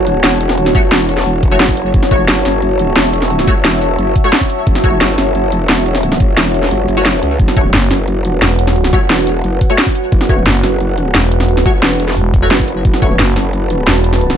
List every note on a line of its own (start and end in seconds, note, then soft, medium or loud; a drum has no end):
0.00 0.22 F#1 loud
0.00 14.37 F#4 medium
0.00 7.36 C#5 medium
0.00 14.37 C#5 medium
0.00 1.92 F#5 medium
0.00 14.37 F#5 medium
0.00 14.37 A5 medium
0.07 closed hi-hat medium
0.07 cabasa medium
0.24 0.73 E1 loud
0.24 snare loud
0.24 closed hi-hat medium
0.41 closed hi-hat medium
0.41 cabasa medium
0.49 snare soft
0.49 cabasa soft
0.58 closed hi-hat medium
0.66 snare soft
0.75 0.90 G1 medium
0.75 0.81 A3 loud
0.75 0.81 F#4 medium
0.75 0.81 C#5 loud
0.75 kick loud
0.75 closed hi-hat medium
0.75 cabasa medium
0.92 1.25 E1 loud
0.92 snare loud
0.92 closed hi-hat medium
1.09 closed hi-hat medium
1.09 cabasa medium
1.17 snare soft
1.26 1.59 E1 loud
1.26 closed hi-hat medium
1.43 kick loud
1.43 closed hi-hat medium
1.43 cabasa medium
1.51 1.58 A3 loud
1.51 1.58 F#4 medium
1.51 1.58 C#5 loud
1.60 1.93 F#1 medium
1.60 snare loud
1.60 closed hi-hat medium
1.69 kick medium
1.77 closed hi-hat medium
1.77 cabasa medium
1.86 cabasa soft
1.94 2.27 F#1 medium
1.94 7.37 E5 medium
1.94 kick loud
1.94 closed hi-hat medium
2.03 snare soft
2.11 2.21 A3 medium
2.11 2.21 F#4 medium
2.11 2.21 C#5 medium
2.11 kick loud
2.11 closed hi-hat medium
2.11 cabasa medium
2.28 2.44 F#1 loud
2.28 snare loud
2.28 closed hi-hat medium
2.45 2.95 F#1 loud
2.45 snare soft
2.45 closed hi-hat medium
2.45 cabasa medium
2.62 closed hi-hat medium
2.79 closed hi-hat medium
2.79 cabasa medium
2.96 3.46 E1 loud
2.96 snare loud
2.96 closed hi-hat medium
3.13 closed hi-hat medium
3.13 cabasa medium
3.22 snare soft
3.22 cabasa soft
3.30 closed hi-hat medium
3.39 snare soft
3.47 3.63 G1 loud
3.47 3.54 A3 loud
3.47 3.54 F#4 medium
3.47 3.54 C#5 loud
3.47 kick loud
3.47 closed hi-hat medium
3.47 cabasa medium
3.64 3.97 E1 loud
3.64 snare loud
3.64 closed hi-hat medium
3.82 closed hi-hat loud
3.82 cabasa medium
3.99 4.14 F#1 loud
3.99 closed hi-hat medium
4.16 kick loud
4.16 closed hi-hat medium
4.16 cabasa medium
4.24 4.30 A3 medium
4.24 4.30 F#4 medium
4.24 4.30 C#5 loud
4.33 snare loud
4.33 closed hi-hat medium
4.41 kick medium
4.50 closed hi-hat medium
4.50 cabasa medium
4.58 cabasa soft
4.67 5.00 F#1 medium
4.67 kick loud
4.67 closed hi-hat medium
4.75 snare soft
4.84 4.94 A3 medium
4.84 4.94 F#4 medium
4.84 4.94 C#5 medium
4.84 kick loud
4.84 closed hi-hat medium
4.84 cabasa medium
5.01 5.17 F#1 loud
5.01 snare loud
5.01 closed hi-hat medium
5.18 5.68 F#1 loud
5.18 snare soft
5.18 closed hi-hat medium
5.18 cabasa medium
5.35 closed hi-hat medium
5.52 closed hi-hat medium
5.52 cabasa medium
5.69 6.19 E1 loud
5.69 snare loud
5.69 closed hi-hat medium
5.86 closed hi-hat medium
5.86 cabasa medium
5.95 snare soft
5.95 cabasa soft
6.03 closed hi-hat medium
6.12 snare soft
6.12 cabasa soft
6.20 6.36 G1 loud
6.20 kick loud
6.20 closed hi-hat loud
6.20 cabasa medium
6.37 6.70 E1 loud
6.37 snare loud
6.37 closed hi-hat medium
6.54 closed hi-hat loud
6.54 cabasa medium
6.63 snare soft
6.71 6.87 G1 loud
6.71 closed hi-hat medium
6.88 7.21 F#1 loud
6.88 closed hi-hat loud
6.88 cabasa medium
6.97 7.03 A3 loud
6.97 7.03 F#4 medium
6.97 7.03 C#5 loud
7.05 snare loud
7.05 closed hi-hat medium
7.22 7.38 C#2 loud
7.22 closed hi-hat loud
7.22 cabasa medium
7.31 cabasa soft
7.40 7.72 F#1 loud
7.40 14.37 B4 medium
7.40 12.83 F#5 medium
7.40 kick loud
7.40 closed hi-hat medium
7.48 snare soft
7.57 7.66 A3 medium
7.57 7.66 F#4 medium
7.57 7.66 C#5 medium
7.57 kick loud
7.57 closed hi-hat loud
7.57 cabasa medium
7.74 7.89 F#1 loud
7.74 snare loud
7.74 closed hi-hat medium
7.91 8.40 F#1 loud
7.91 snare medium
7.91 closed hi-hat loud
7.91 cabasa medium
8.08 closed hi-hat medium
8.25 closed hi-hat medium
8.25 cabasa medium
8.42 8.92 E1 loud
8.42 snare loud
8.42 closed hi-hat medium
8.59 closed hi-hat loud
8.59 cabasa medium
8.67 snare soft
8.67 cabasa soft
8.76 closed hi-hat medium
8.84 snare medium
8.93 9.09 G1 loud
8.93 8.99 A3 loud
8.93 8.99 F#4 medium
8.93 8.99 C#5 loud
8.93 kick loud
8.93 closed hi-hat medium
8.93 cabasa medium
9.10 9.43 E1 medium
9.10 snare loud
9.10 closed hi-hat medium
9.27 closed hi-hat loud
9.27 cabasa medium
9.44 9.60 F#1 loud
9.44 closed hi-hat medium
9.61 kick loud
9.61 closed hi-hat loud
9.61 cabasa medium
9.70 9.76 A3 medium
9.70 9.76 F#4 medium
9.70 9.76 C#5 loud
9.78 snare loud
9.78 closed hi-hat medium
9.87 kick medium
9.95 closed hi-hat loud
9.95 cabasa medium
10.04 cabasa soft
10.12 10.45 F#1 loud
10.12 kick loud
10.12 closed hi-hat medium
10.21 snare soft
10.29 10.39 A3 medium
10.29 10.39 F#4 medium
10.29 10.39 C#5 medium
10.29 kick loud
10.29 closed hi-hat medium
10.29 cabasa medium
10.46 10.62 F#1 loud
10.46 snare loud
10.46 closed hi-hat medium
10.63 11.13 F#1 loud
10.63 snare medium
10.63 closed hi-hat medium
10.63 cabasa medium
10.80 closed hi-hat medium
10.97 closed hi-hat medium
10.97 cabasa medium
11.14 11.64 E1 loud
11.14 snare loud
11.14 closed hi-hat medium
11.32 closed hi-hat medium
11.32 cabasa medium
11.40 snare soft
11.40 cabasa soft
11.49 closed hi-hat medium
11.57 snare soft
11.66 11.81 G1 loud
11.66 11.72 A3 loud
11.66 11.72 F#4 medium
11.66 11.72 C#5 loud
11.66 kick loud
11.66 closed hi-hat medium
11.66 cabasa medium
11.83 12.15 E1 loud
11.83 snare loud
11.83 closed hi-hat medium
12.00 closed hi-hat medium
12.00 cabasa medium
12.08 snare soft
12.17 12.50 E1 loud
12.17 closed hi-hat medium
12.34 kick loud
12.34 closed hi-hat medium
12.34 cabasa medium
12.42 12.48 A3 loud
12.42 12.48 F#4 medium
12.42 12.48 C#5 loud
12.51 12.84 F#1 loud
12.51 snare loud
12.51 closed hi-hat medium
12.59 kick medium
12.68 closed hi-hat medium
12.68 cabasa medium
12.77 cabasa soft
12.85 13.18 F#1 loud
12.85 14.37 A5 medium
12.85 kick loud
12.85 closed hi-hat medium
12.94 snare soft
13.02 13.12 A3 medium
13.02 13.12 F#4 medium
13.02 13.12 C#5 medium
13.02 kick loud
13.02 closed hi-hat medium
13.02 cabasa medium
13.19 13.35 F#1 loud
13.19 snare loud
13.19 closed hi-hat medium
13.36 13.86 F#1 loud
13.36 snare soft
13.36 closed hi-hat medium
13.36 cabasa medium
13.53 closed hi-hat medium
13.70 closed hi-hat medium
13.70 cabasa medium
13.87 14.37 E1 loud
13.87 snare loud
13.87 closed hi-hat medium
14.04 closed hi-hat medium
14.04 cabasa medium
14.13 snare soft
14.13 cabasa soft
14.21 closed hi-hat medium
14.30 snare soft